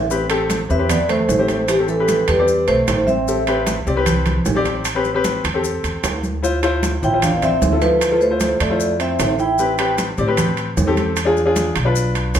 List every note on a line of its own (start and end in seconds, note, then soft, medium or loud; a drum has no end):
0.00 0.64 A1 medium
0.10 0.24 C4 medium
0.10 0.25 G4 medium
0.10 0.25 B4 medium
0.10 high conga soft
0.10 maracas medium
0.30 0.58 C4 medium
0.30 0.58 G4 medium
0.30 0.58 A4 loud
0.30 high conga soft
0.30 high timbale medium
0.30 maracas soft
0.50 high conga medium
0.50 high timbale medium
0.50 low timbale soft
0.50 maracas medium
0.69 1.25 E2 medium
0.69 0.77 C4 medium
0.69 0.88 C4 medium
0.69 0.77 G4 medium
0.69 0.77 B4 medium
0.69 0.89 E5 medium
0.69 high conga soft
0.69 maracas soft
0.78 1.21 C4 medium
0.78 1.21 G4 medium
0.78 1.21 B4 medium
0.89 0.98 B3 medium
0.89 0.99 D5 medium
0.89 high conga soft
0.89 low conga medium
0.89 high timbale medium
0.89 maracas medium
1.09 1.65 A3 medium
1.09 1.71 C5 medium
1.09 high conga soft
1.09 low conga medium
1.09 high timbale medium
1.09 maracas soft
1.29 2.22 A1 medium
1.29 high conga medium
1.29 low timbale medium
1.29 maracas medium
1.38 1.67 C4 medium
1.38 1.67 G4 medium
1.38 1.67 C5 medium
1.48 high conga medium
1.48 high timbale medium
1.48 maracas soft
1.68 1.77 E3 medium
1.68 1.78 G4 medium
1.68 high conga soft
1.68 high timbale medium
1.68 maracas medium
1.79 1.93 C4 medium
1.79 1.93 G4 medium
1.79 1.93 A4 medium
1.88 2.25 E3 medium
1.88 2.25 A4 medium
1.88 high conga soft
1.88 maracas soft
2.00 2.27 C4 medium
2.00 2.27 G4 medium
2.00 2.27 B4 medium
2.08 high conga medium
2.08 high timbale medium
2.08 low timbale medium
2.08 maracas medium
2.27 2.65 E2 medium
2.27 2.65 G3 medium
2.27 2.69 B4 medium
2.27 high conga soft
2.27 high timbale medium
2.27 maracas soft
2.39 2.94 C4 medium
2.39 2.94 G4 medium
2.39 2.94 D5 medium
2.48 high conga soft
2.48 maracas medium
2.67 2.86 B1 medium
2.67 3.04 A3 medium
2.67 3.09 C5 medium
2.67 high conga soft
2.67 high timbale medium
2.67 maracas soft
2.88 3.81 A1 medium
2.88 high conga soft
2.88 high timbale medium
2.88 low timbale medium
2.88 maracas medium
3.07 3.63 C4 medium
3.07 3.63 E5 medium
3.07 high conga medium
3.07 maracas soft
3.28 3.41 C4 medium
3.28 3.42 G4 medium
3.28 3.42 A4 medium
3.28 high conga soft
3.28 maracas medium
3.47 3.75 C4 medium
3.47 3.75 G4 medium
3.47 3.75 B4 medium
3.47 high conga soft
3.47 high timbale medium
3.47 maracas soft
3.67 high conga medium
3.67 high timbale medium
3.67 low timbale medium
3.67 maracas medium
3.87 4.42 C2 medium
3.87 3.94 C4 medium
3.87 3.94 G4 medium
3.87 3.94 D5 medium
3.87 high conga soft
3.87 maracas soft
3.96 4.38 C4 medium
3.96 4.38 G4 medium
3.96 4.38 B4 loud
4.06 high conga soft
4.06 low conga medium
4.06 high timbale medium
4.06 maracas medium
4.26 high conga soft
4.26 low conga medium
4.26 high timbale medium
4.26 maracas soft
4.46 5.39 A1 medium
4.46 high conga medium
4.46 low timbale medium
4.46 maracas medium
4.55 4.83 C4 medium
4.55 4.84 G4 medium
4.55 4.84 D5 loud
4.65 high timbale medium
4.65 maracas soft
4.85 high conga soft
4.85 high timbale medium
4.85 maracas medium
4.95 5.09 C4 medium
4.95 5.09 G4 medium
4.95 5.09 B4 medium
5.05 high conga soft
5.05 maracas soft
5.14 5.42 C4 medium
5.14 5.43 G4 medium
5.14 5.43 B4 loud
5.24 high conga medium
5.24 high timbale medium
5.24 low timbale medium
5.24 maracas medium
5.44 5.81 E2 medium
5.44 high conga soft
5.44 high timbale medium
5.44 maracas soft
5.54 6.10 C4 medium
5.54 6.10 G4 medium
5.54 6.10 A4 medium
5.64 high conga soft
5.64 maracas medium
5.84 6.02 E2 medium
5.84 high conga soft
5.84 high timbale medium
5.84 maracas soft
6.04 6.97 D2 medium
6.04 high conga soft
6.04 high timbale medium
6.04 low timbale medium
6.04 maracas medium
6.23 high conga medium
6.23 maracas soft
6.43 6.57 E4 medium
6.43 6.57 F4 medium
6.43 6.57 C5 loud
6.43 high conga soft
6.43 maracas medium
6.63 6.91 E4 loud
6.63 6.91 F4 medium
6.63 6.91 C5 loud
6.63 high conga soft
6.63 high timbale medium
6.63 maracas soft
6.83 high conga medium
6.83 high timbale medium
6.83 low timbale medium
6.83 maracas medium
7.02 7.58 A1 medium
7.02 7.09 E4 medium
7.02 7.21 E4 medium
7.02 7.10 F4 medium
7.02 7.10 C5 medium
7.02 7.24 G5 medium
7.02 high conga soft
7.02 maracas soft
7.13 7.54 E4 medium
7.13 7.54 F4 medium
7.13 7.55 C5 medium
7.22 7.34 D4 medium
7.22 7.36 F5 medium
7.22 high conga soft
7.22 low conga medium
7.22 high timbale medium
7.22 maracas medium
7.35 7.41 B3 medium
7.35 7.42 D5 medium
7.42 7.79 C4 medium
7.42 7.80 E5 medium
7.42 high conga soft
7.42 low conga medium
7.42 high timbale medium
7.42 maracas soft
7.62 8.54 D2 medium
7.62 high conga medium
7.62 low timbale medium
7.62 maracas medium
7.72 8.00 E4 medium
7.72 8.00 F4 medium
7.72 8.00 A4 medium
7.82 8.18 F3 medium
7.82 8.22 B4 medium
7.82 high conga medium
7.82 high timbale medium
7.82 maracas soft
8.01 high conga soft
8.01 high timbale medium
8.01 maracas medium
8.11 8.25 E4 medium
8.11 8.25 F4 medium
8.11 8.25 A4 medium
8.21 8.58 A3 medium
8.21 8.58 C5 medium
8.21 high conga soft
8.21 maracas soft
8.30 8.58 E4 medium
8.30 8.58 F4 medium
8.30 8.59 C5 medium
8.40 high conga medium
8.40 high timbale medium
8.40 low timbale medium
8.40 maracas medium
8.60 9.15 F2 medium
8.60 8.97 A3 medium
8.60 8.98 D5 medium
8.60 high conga soft
8.60 high timbale medium
8.60 maracas soft
8.70 9.25 E4 medium
8.70 9.25 F4 medium
8.70 9.26 C5 medium
8.80 high conga soft
8.80 maracas medium
8.99 9.36 C4 medium
8.99 9.41 E5 medium
8.99 high conga soft
8.99 high timbale medium
8.99 maracas soft
9.19 10.12 A1 medium
9.19 high conga soft
9.19 high timbale medium
9.19 low timbale medium
9.19 maracas medium
9.39 9.94 E4 medium
9.39 9.95 G5 medium
9.39 maracas soft
9.58 9.73 C4 medium
9.58 9.73 G4 medium
9.58 9.73 B4 medium
9.58 high conga soft
9.58 maracas medium
9.78 10.06 C4 medium
9.78 10.06 G4 medium
9.78 10.07 B4 medium
9.78 high conga soft
9.78 high timbale medium
9.78 maracas soft
9.98 high conga medium
9.98 high timbale medium
9.98 low timbale medium
9.98 maracas medium
10.18 10.73 A2 medium
10.18 10.25 C4 medium
10.18 10.25 G4 medium
10.18 10.25 D5 medium
10.18 high conga soft
10.18 maracas soft
10.27 10.69 C4 medium
10.27 10.69 G4 medium
10.27 10.70 B4 medium
10.37 high conga soft
10.37 low conga medium
10.37 high timbale medium
10.37 maracas medium
10.57 high conga soft
10.57 high timbale medium
10.57 maracas soft
10.77 11.70 E2 medium
10.77 high conga medium
10.77 low timbale medium
10.77 maracas medium
10.87 11.15 C4 medium
10.87 11.15 G4 medium
10.87 11.15 A4 loud
10.97 high conga medium
10.97 high timbale medium
10.97 maracas soft
11.17 high conga soft
11.17 high timbale medium
11.17 maracas medium
11.25 11.40 D4 medium
11.25 11.40 F4 medium
11.25 11.40 G#4 loud
11.36 high conga soft
11.36 maracas soft
11.46 11.73 D4 medium
11.46 11.74 F4 medium
11.46 11.74 G#4 loud
11.56 high conga medium
11.56 high timbale medium
11.56 low timbale medium
11.56 maracas medium
11.76 12.31 B1 medium
11.76 high conga soft
11.76 high timbale medium
11.76 maracas soft
11.85 12.40 D4 medium
11.85 12.40 F4 medium
11.85 12.40 B4 medium
11.96 high conga soft
11.96 maracas medium
12.15 high conga soft
12.15 high timbale medium
12.15 maracas soft
12.35 12.40 E2 medium
12.35 high conga soft
12.35 high timbale medium
12.35 low timbale medium
12.35 maracas medium